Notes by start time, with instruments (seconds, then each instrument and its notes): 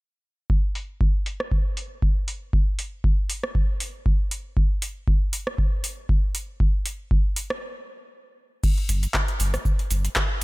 0.50 kick
0.75 open hi-hat
1.01 kick
1.26 open hi-hat
1.40 cross-stick
1.52 kick
1.77 open hi-hat
2.02 kick
2.28 open hi-hat
2.53 kick
2.79 open hi-hat
3.04 kick
3.30 open hi-hat
3.44 cross-stick
3.55 kick
3.80 open hi-hat
4.06 kick
4.31 open hi-hat
4.57 kick
4.82 open hi-hat
5.08 kick
5.33 open hi-hat
5.47 cross-stick
5.58 kick
5.84 open hi-hat
6.09 kick
6.35 open hi-hat
6.60 kick
6.86 open hi-hat
7.11 kick
7.36 open hi-hat
7.50 cross-stick
8.64 kick, crash, shaker
8.78 closed hi-hat
8.89 analog synth bass G1, open hi-hat, shaker
9.03 closed hi-hat, shaker
9.14 kick, clap, shaker
9.28 closed hi-hat
9.40 analog synth bass G1, open hi-hat, shaker
9.54 cross-stick, closed hi-hat, shaker
9.65 kick, shaker
9.79 closed hi-hat
9.91 analog synth bass G1, open hi-hat, shaker
10.05 closed hi-hat, shaker
10.16 kick, clap, shaker